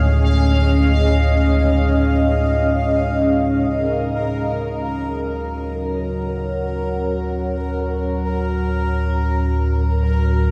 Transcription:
Already playing: D2 A2 C#4 G#4 D#5 F5
3.68 D2 A2 F#4
3.72 A#4
4.63 C#5
5.12 F#5
6.15 A#5

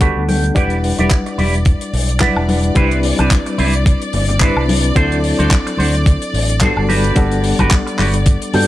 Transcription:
0.00 G3 B3 D4 F#4 G4 A4 B4 D5 F#5, kick, closed hi-hat
0.16 D2
0.28 G5, open hi-hat, high conga
0.44 muted clean electric guitar stroke, closed hi-hat
0.55 E1 G3 D4 E4 G4 B4 D5 F#5, kick, closed hi-hat, low conga
0.70 closed hi-hat
0.84 open hi-hat
0.98 E1 E4 G4 D5, closed hi-hat, high conga
1.10 kick, clap, closed hi-hat
1.26 muted clean electric guitar stroke, closed hi-hat
1.38 E1 E4 G4 D5, open hi-hat, high conga
1.54 closed hi-hat
1.65 muted clean electric guitar stroke, kick, closed hi-hat
1.81 closed hi-hat
1.93 B1, muted clean electric guitar stroke, open hi-hat
2.09 muted clean electric guitar stroke, closed hi-hat
2.20 G3 D4 E4 G4 B4 D5 F#5, kick, clap, closed hi-hat, high conga
2.36 E1, high woodblock
2.49 open hi-hat, high conga
2.64 muted clean electric guitar stroke, closed hi-hat
2.75 C2 G3 C4 D4 E4 B4, kick, closed hi-hat, low conga
2.91 closed hi-hat
3.03 open hi-hat
3.19 C2 C4 E4 B4, closed hi-hat, high conga, high woodblock
3.31 kick, clap, closed hi-hat
3.46 muted clean electric guitar stroke, closed hi-hat
3.58 C2 C4 E4 B4, open hi-hat, high conga
3.74 closed hi-hat
3.86 muted clean electric guitar stroke, kick, closed hi-hat
4.02 closed hi-hat
4.13 G1, muted clean electric guitar stroke, open hi-hat, low conga
4.29 muted clean electric guitar stroke, closed hi-hat, low conga
4.41 G3 C4 D4 E4 B4, kick, clap, closed hi-hat
4.56 C2, high woodblock
4.69 open hi-hat, high conga
4.84 muted clean electric guitar stroke, closed hi-hat
4.95 D2 F#3 C4 D4 E4 F#4 A4 C5, kick, closed hi-hat, low conga
5.12 closed hi-hat
5.24 open hi-hat
5.39 D2 D4 F#4 C5, closed hi-hat, high conga
5.51 kick, clap, closed hi-hat
5.66 muted clean electric guitar stroke, closed hi-hat
5.77 D2 D4 F#4 C5, open hi-hat, high conga
5.95 closed hi-hat
6.06 muted clean electric guitar stroke, kick, closed hi-hat
6.22 closed hi-hat
6.33 A1, muted clean electric guitar stroke, open hi-hat
6.49 muted clean electric guitar stroke, closed hi-hat
6.61 G3 B3 D4 F#4 A4 C5, kick, clap, closed hi-hat, high conga
6.77 G1, high woodblock
6.89 F#4 G4 B4, open hi-hat, high conga
7.04 closed hi-hat
7.15 G1 G3 B3 D4 A4 F#5, kick, closed hi-hat, low conga
7.31 closed hi-hat
7.44 open hi-hat
7.59 G1 F#4 G4 B4, kick, closed hi-hat, high conga, high woodblock
7.71 kick, clap, closed hi-hat
7.86 muted clean electric guitar stroke, closed hi-hat
7.98 G1 F#4 G4 B4, clap, open hi-hat, high conga
8.14 closed hi-hat
8.26 muted clean electric guitar stroke, kick, closed hi-hat
8.42 closed hi-hat
8.53 G2 G3 B3 D4 F#4 A4 G5, muted clean electric guitar stroke, open hi-hat, low conga

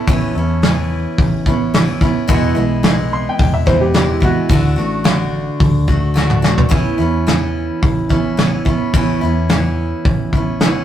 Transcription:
Already playing: E4 A4
0.07 A1 A2 E3 B3 C#4 E4, kick, open hi-hat
0.35 E2 B3 C#4 E4
0.62 E3 B3 C#4, snare, open hi-hat
0.67 E4
1.18 A1, kick, open hi-hat
1.46 B3 C#4 E4, kick, snare
1.73 E3 B3 C#4 E4, snare, open hi-hat
2.01 B3 C#4 E4, kick
2.28 E1 E2 B2 E3 G#3 B3 E4, kick, open hi-hat
2.55 B1 E3 G#3 B3 E4
2.83 E3 G#3 B3 E4, snare, open hi-hat
3.13 C6
3.29 G5
3.38 E1 G5, kick, open hi-hat
3.54 E5
3.66 E3 G#3 B3 E4 C5, kick, snare
3.81 G4
3.94 E3 G#3 B3 E4 G4, snare, open hi-hat
4.20 E3 G#3 B3 E4 F#4, kick
4.49 D2 D3 A3 D4 F#4, kick, open hi-hat
4.76 A1 A3 D4 F#4
5.04 D3 A3 D4 F#4, snare, open hi-hat
5.60 D2, kick, open hi-hat
5.88 A3 D4 F#4, kick
6.14 D3 A3 D4 F#4, snare
6.30 mid tom
6.42 A3 D4 F#4, snare
6.58 floor tom
6.69 A1 A2 E3 B3 C#4 E4, kick, open hi-hat
6.98 E2 B3 C#4 E4
7.27 E3 B3 C#4 E4, snare, open hi-hat
7.83 A1, kick, open hi-hat
8.09 B3 C#4 E4, kick, snare
8.37 E3 B3 C#4 E4, snare, open hi-hat
8.65 B3 C#4 E4, kick
8.93 A1 A2 E3 B3 C#4 E4, kick, open hi-hat
9.21 E2 B3 C#4 E4
9.49 E3 B3 C#4, snare, open hi-hat
9.53 E4
10.05 A1, kick, open hi-hat
10.33 B3 C#4 E4, kick
10.60 E3 B3 C#4, snare, open hi-hat
10.65 E4

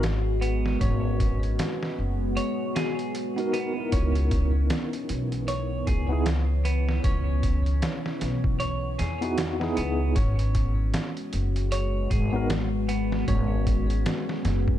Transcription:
Already playing: G#1 G#3 B3 F#4
0.03 snare, closed hi-hat
0.41 B3, closed hi-hat
0.66 snare
0.81 G#1 C#4, kick, closed hi-hat
1.20 kick, closed hi-hat
1.43 closed hi-hat
1.59 snare, closed hi-hat
1.83 snare
1.99 F#1
2.37 C#5, closed hi-hat
2.75 G#4, snare, closed hi-hat
2.99 closed hi-hat
3.15 closed hi-hat
3.36 B3 D#4 F#4 A#4, closed hi-hat
3.53 B3, closed hi-hat
3.74 B3 D#4
3.78 E4 A#4
3.92 C#2 E3 B3 C#4 C#5, kick, closed hi-hat
4.15 closed hi-hat
4.31 kick, closed hi-hat
4.70 snare, closed hi-hat
4.93 closed hi-hat
5.09 B1, closed hi-hat
5.32 closed hi-hat
5.48 C#5, closed hi-hat
5.87 C#2 G#4, kick, closed hi-hat
6.09 B3 D#4 E4 G#4
6.26 snare, closed hi-hat
6.65 B3, closed hi-hat
6.89 snare
7.04 C#2 C#4, kick, closed hi-hat
7.43 kick, closed hi-hat
7.66 closed hi-hat
7.82 snare, closed hi-hat
8.06 snare
8.21 B1, snare, closed hi-hat
8.44 kick
8.60 C#5, closed hi-hat
8.99 E2 G#4, snare, closed hi-hat
9.21 B3 D#4 E4 F#4, closed hi-hat
9.38 snare, closed hi-hat
9.60 B3 D#4 E4 G#4, snare
9.77 C#2 B3, closed hi-hat
10.15 G#1 G#3 B3 C#4 F#4, kick, closed hi-hat
10.39 closed hi-hat
10.55 kick, closed hi-hat
10.94 snare, closed hi-hat
11.17 closed hi-hat
11.33 F#1, closed hi-hat
11.56 closed hi-hat
11.72 C#5, closed hi-hat
12.10 G#1 G#4, kick, closed hi-hat
12.33 B3 D#4 F#4 A#4
12.50 snare, closed hi-hat
12.89 B3, closed hi-hat
13.12 snare
13.28 G#1 C#4, kick, closed hi-hat
13.67 kick, closed hi-hat
13.90 closed hi-hat
14.06 snare, closed hi-hat
14.29 snare
14.45 F#1, snare, closed hi-hat
14.68 kick

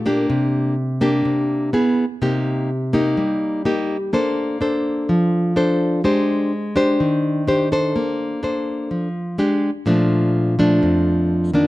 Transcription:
Already playing: A#2
0.06 A#3 D4 G4
0.30 C3
1.01 A#3 D4 G4
1.25 C3
1.73 B3 E4 G#4
2.22 C3 A#3 D#4 G4
2.93 A#3 D#4 G4
3.17 G3
3.65 A#3 D#4 G4
4.13 A#3 D4 A4 C5
4.61 D4 A4 C5
5.09 F3
5.56 D4 A4 C5
6.04 G#3 D4 G4 C5
6.76 D4 G4 C5
7.00 D#3
7.47 D4 G4 C5
7.72 D4 A4 C5
7.96 A#3
8.43 D4 A4 C5
8.91 F3
9.38 G#3 D4 G4
9.86 A#2 F3 A3 D4
10.59 F3 A3 D4
10.83 F2
11.54 D#3 A#3 D4

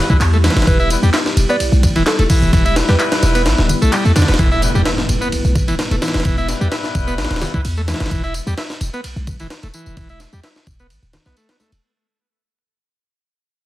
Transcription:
Already playing: G3 B3 E4 G4
0.10 B1 E3 G3 B3 E4 B4, kick, tambourine
0.20 E2, clap, ride, tambourine
0.33 A3, tambourine
0.44 E3, snare, ride, tambourine, high conga
0.50 snare, ride
0.56 G1, snare, ride, tambourine
0.62 snare, ride
0.67 E1 E3 B4, kick, ride, tambourine
0.80 E4, tambourine
0.90 G3 B3 E4 B4, ride, tambourine
1.03 E2 G3, tambourine
1.14 E4, snare, clap, ride, tambourine
1.26 snare, tambourine
1.37 E1, ride, tambourine
1.49 B3 D5, tambourine
1.60 B1, ride, tambourine
1.72 B1, tambourine, high conga
1.83 kick, ride, tambourine, low conga
1.96 D1 E3, ride, tambourine
2.06 A4, snare, clap, ride, tambourine
2.19 E1 A3 A4, ride, tambourine
2.30 E3, kick, open hi-hat, ride, tambourine
2.42 E1, tambourine
2.53 E1 E3, kick, ride, tambourine
2.65 E4, ride, tambourine, high conga
2.76 G3 B3 E4 B4, snare, ride, tambourine
2.88 E2 G3 B4, snare, tambourine, high conga
2.99 E4 B4, clap, ride, tambourine
3.12 snare, ride, tambourine
3.23 E1, snare, ride, tambourine
3.35 B3, ride, tambourine
3.46 A1, snare, ride, tambourine
3.58 D1, snare, tambourine
3.69 ride, tambourine, low conga
3.82 B1 A3, tambourine
3.92 G3, clap, ride, tambourine
4.05 E2 A3, tambourine
4.16 E2 D3, snare, ride, tambourine, high conga
4.22 snare, ride
4.28 E1 B3, snare, ride, tambourine
4.34 snare, ride
4.39 E1 E3 G3 B3 E4 B4, kick, ride, tambourine, impact
4.52 E4, tambourine
4.62 G3 B3 E4 B4, ride, tambourine
4.75 E2 G3, tambourine
4.86 E4, snare, ride, tambourine
4.98 snare, tambourine
5.09 E1, ride, tambourine
5.21 B3, tambourine
5.32 B1, ride, tambourine
5.44 B1, tambourine, high conga
5.55 kick, ride, tambourine, low conga
5.68 D1 E3, ride, tambourine
5.79 snare, ride, tambourine
5.91 E1 A3, ride, tambourine
6.02 E3, snare, ride, tambourine
6.08 snare, ride
6.14 E1, snare, ride, tambourine
6.20 snare, ride
6.25 E1 E3, kick, ride, tambourine
6.38 E4, tambourine, high conga
6.48 G3 B3 E4 B4, snare, ride, tambourine
6.61 E2 G3, tambourine
6.72 E4, snare, ride, tambourine
6.84 snare, tambourine
6.95 E1, kick, ride, tambourine
7.07 B3, tambourine
7.18 A1, snare, ride, tambourine
7.24 snare, ride
7.30 D1, snare, ride, tambourine
7.36 snare, ride
7.41 snare, ride, tambourine, low conga
7.54 B1 E3 G3 B3 E4 B4, kick, tambourine
7.65 E2, ride, tambourine
7.77 A3, tambourine
7.88 E3, snare, ride, tambourine, high conga
7.94 snare, ride
8.00 G1, snare, ride, tambourine
8.06 snare, ride
8.11 E1 E3, kick, ride, tambourine
8.24 E4, tambourine
8.34 ride, tambourine
8.47 E2 G3, tambourine
8.58 E4, snare, ride, tambourine
8.70 snare, tambourine
8.81 E1, ride, tambourine
8.93 B3, tambourine
9.04 B1, ride, tambourine
9.16 B1, tambourine, high conga
9.27 kick, ride, tambourine, low conga
9.40 D1 E3, ride, tambourine
9.50 snare, ride, tambourine
9.63 E1 A3, ride, tambourine
9.74 E3, tambourine
9.86 E1, tambourine
9.97 E1 E3, kick, ride, tambourine
10.09 E4, tambourine, high conga
10.20 snare, ride, tambourine
10.33 E2 G3, tambourine
10.43 E4, snare, ride, tambourine
10.56 snare, tambourine
10.67 E1, kick, ride, tambourine
10.79 B3, tambourine
10.90 A1, ride, tambourine
11.03 D1, tambourine
11.13 snare, ride, tambourine, low conga
11.26 B1 B3, snare, tambourine
11.37 A3, ride, tambourine
11.49 B3, snare, ride, tambourine
11.60 A3, snare, tambourine, high conga
11.72 E1, ride, tambourine

